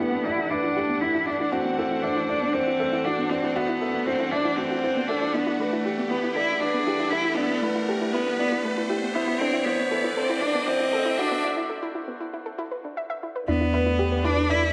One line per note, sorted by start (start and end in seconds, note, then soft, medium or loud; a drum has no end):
0.00 9.40 E3 medium
0.00 11.44 A3 medium
0.00 0.26 B3 medium
0.00 1.27 D4 medium
0.00 11.44 D4 medium
0.00 1.02 E4 medium
0.00 0.77 G4 medium
0.00 0.51 B4 medium
0.00 0.25 D5 medium
0.00 11.45 F#5 medium
0.00 riser medium
0.12 0.19 B3 medium
0.24 0.51 E4 loud
0.24 0.32 E4 medium
0.24 0.40 D5 medium
0.38 0.42 E4 loud
0.50 1.02 D4 loud
0.50 0.75 B4 medium
0.50 0.58 E5 medium
0.64 0.74 E4 loud
0.76 0.86 E4 medium
0.76 1.01 G4 medium
0.89 0.96 B3 medium
1.01 1.27 E4 loud
1.01 1.26 E4 medium
1.01 1.09 E4 medium
1.14 1.19 E4 medium
1.26 1.53 D4 loud
1.26 1.52 D4 medium
1.26 1.34 E5 medium
1.40 1.50 E4 loud
1.52 2.04 C4 medium
1.52 1.63 E4 medium
1.52 1.77 F#4 medium
1.65 1.72 B3 medium
1.78 1.85 E4 medium
1.78 2.03 A4 medium
1.91 1.95 E4 medium
2.02 2.27 D4 medium
2.02 2.28 C5 medium
2.02 2.10 E5 medium
2.16 2.26 E4 medium
2.28 2.55 D4 medium
2.28 2.39 E4 medium
2.28 2.44 D5 medium
2.41 2.48 B3 medium
2.53 3.06 C4 loud
2.53 2.61 E4 medium
2.53 2.79 C5 medium
2.67 2.71 E4 loud
2.80 3.04 A4 medium
2.80 2.87 E5 medium
2.93 3.03 E4 medium
3.05 3.31 D4 medium
3.05 3.16 E4 medium
3.05 3.30 F#4 medium
3.19 3.25 B3 medium
3.30 3.57 C4 medium
3.30 3.55 D4 medium
3.30 3.37 E4 medium
3.43 3.48 E4 medium
3.55 4.07 B3 medium
3.55 3.80 F#4 loud
3.55 3.63 E5 medium
3.69 3.79 E4 loud
3.81 3.92 E4 medium
3.81 4.06 A4 medium
3.94 4.01 B3 medium
4.06 4.33 C4 medium
4.06 4.14 E4 medium
4.06 4.31 C5 medium
4.20 4.24 E4 medium
4.31 4.58 D4 loud
4.31 4.47 D5 medium
4.31 4.39 E5 medium
4.45 4.55 E4 medium
4.56 5.09 C4 medium
4.56 4.65 F#4 medium
4.56 4.73 D5 medium
4.71 4.81 F#4 medium
4.84 4.88 E4 medium
4.84 5.08 C5 medium
4.96 5.03 B3 medium
5.08 5.35 D4 medium
5.08 5.33 A4 medium
5.08 5.19 E5 medium
5.22 5.28 E4 medium
5.33 5.60 B3 medium
5.33 5.59 D4 medium
5.33 5.41 E4 medium
5.47 5.51 E4 loud
5.58 6.11 A3 medium
5.58 5.70 A4 medium
5.58 5.74 B4 medium
5.73 5.83 E4 loud
5.85 5.95 E4 medium
5.85 6.09 G4 medium
5.98 6.05 B3 medium
6.09 6.35 B3 medium
6.09 6.17 E4 medium
6.09 6.35 B4 medium
6.23 6.27 E4 medium
6.35 6.61 E4 loud
6.35 6.46 A4 medium
6.35 6.50 D5 medium
6.49 6.59 E4 loud
6.60 7.12 D4 loud
6.60 6.71 E4 medium
6.60 6.86 B4 medium
6.74 6.81 B3 medium
6.87 6.93 E4 medium
6.87 7.11 G4 medium
6.99 7.03 E4 loud
7.11 7.37 E4 medium
7.11 7.36 E4 medium
7.11 7.22 A4 medium
7.25 7.35 E4 medium
7.36 7.63 B3 medium
7.36 7.62 D4 medium
7.36 7.47 E4 medium
7.50 7.57 B3 medium
7.61 8.14 A3 medium
7.61 7.70 E4 medium
7.61 7.78 B4 medium
7.75 7.80 E4 loud
7.88 8.13 G4 medium
7.88 7.98 A4 medium
8.01 8.11 E4 medium
8.13 8.38 B3 medium
8.13 8.24 E4 medium
8.13 8.38 B4 medium
8.27 8.33 B3 medium
8.39 8.65 B3 loud
8.39 8.46 E4 medium
8.39 8.54 D5 medium
8.52 8.56 E4 loud
8.63 9.15 A3 medium
8.63 8.75 A4 medium
8.63 8.89 B4 medium
8.77 8.87 E4 loud
8.90 9.00 E4 medium
8.90 9.14 G4 medium
9.02 9.09 B3 medium
9.14 9.40 B3 medium
9.14 9.22 E4 medium
9.14 9.40 E4 medium
9.28 9.32 E4 medium
9.39 11.45 E3 medium
9.39 9.66 C4 loud
9.39 9.65 D4 medium
9.39 9.51 A4 medium
9.53 9.63 E4 loud
9.64 10.15 B3 medium
9.64 9.76 E4 medium
9.64 9.81 C5 medium
9.79 9.86 B3 medium
9.91 9.98 E4 medium
9.91 10.16 A4 medium
10.04 10.08 E4 medium
10.16 10.43 C4 medium
10.16 10.27 A4 medium
10.16 10.41 C5 medium
10.29 10.40 E4 loud
10.41 10.68 D4 loud
10.41 10.52 E4 medium
10.41 10.57 D5 medium
10.54 10.62 B3 medium
10.67 11.19 C4 medium
10.67 10.74 E4 medium
10.67 10.92 C5 medium
10.80 10.84 E4 loud
10.93 11.03 A4 medium
10.93 11.18 A4 medium
11.05 11.16 E4 loud
11.18 11.44 D4 loud
11.18 11.29 E4 medium
11.18 11.43 F#4 medium
11.31 11.38 B3 medium
11.44 11.51 E4 medium
11.56 11.61 E4 medium
11.69 11.80 A4 medium
11.82 11.92 E4 loud
11.95 12.05 E4 medium
12.08 12.14 B3 medium
12.20 12.27 E4 medium
12.33 12.37 E4 medium
12.46 12.56 A4 medium
12.58 12.68 E4 loud
12.71 12.78 B4 medium
12.85 12.94 D4 medium
12.97 13.01 E5 medium
13.10 13.16 E5 loud
13.23 13.27 E4 medium
13.36 13.45 B4 medium
13.48 14.73 E2 medium
13.48 14.26 B3 medium
13.48 13.72 D4 medium
13.48 13.58 E4 loud
13.61 13.67 E4 medium
13.72 14.73 A3 medium
13.72 13.88 B4 medium
13.72 13.80 E5 medium
13.86 13.93 E4 medium
13.99 14.23 G4 medium
13.99 14.03 G4 medium
14.12 14.73 D4 medium
14.12 14.16 B4 medium
14.24 14.52 D4 loud
14.24 14.34 E4 loud
14.24 14.49 B4 medium
14.37 14.43 E4 medium
14.49 14.73 E4 loud
14.49 14.64 D5 medium
14.49 14.56 E5 medium
14.62 14.69 E4 medium